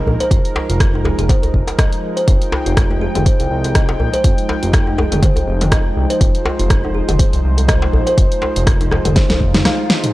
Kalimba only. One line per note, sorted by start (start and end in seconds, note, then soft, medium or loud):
0.20 0.30 C5 loud
0.31 0.39 F4 medium
0.69 0.75 F4 medium
0.94 1.00 D#4 medium
1.05 1.17 G#4 medium
1.18 1.24 G#4 medium
1.29 1.37 C5 medium
1.78 1.92 D#5 medium
2.17 2.27 C5 medium
2.28 2.35 F4 medium
2.66 2.72 F4 medium
2.90 2.96 D#4 medium
3.01 3.14 G#4 medium
3.15 3.21 G#4 medium
3.26 3.34 C5 medium
3.75 3.88 D#5 medium
4.14 4.23 C5 medium
4.24 4.32 F4 medium
4.63 4.69 F4 medium
4.87 4.93 D#4 medium
4.98 5.11 G#4 medium
5.12 5.18 G#4 medium
5.23 5.30 C5 medium
5.72 5.85 D#5 medium
6.10 6.20 C5 loud
6.21 6.29 F4 medium
6.59 6.65 F4 medium
6.84 6.90 D#4 medium
6.95 7.07 G#4 medium
7.08 7.14 G#4 medium
7.19 7.27 C5 medium
7.68 7.82 D#5 medium
8.07 8.17 C5 loud
8.18 8.25 F4 medium
8.56 8.62 F4 medium
8.80 8.87 D#4 medium
8.91 9.04 G#4 medium
9.05 9.11 G#4 medium
9.16 9.24 C5 medium
9.55 9.65 D#4 medium
9.65 9.73 F5 medium
10.04 10.13 D#4 medium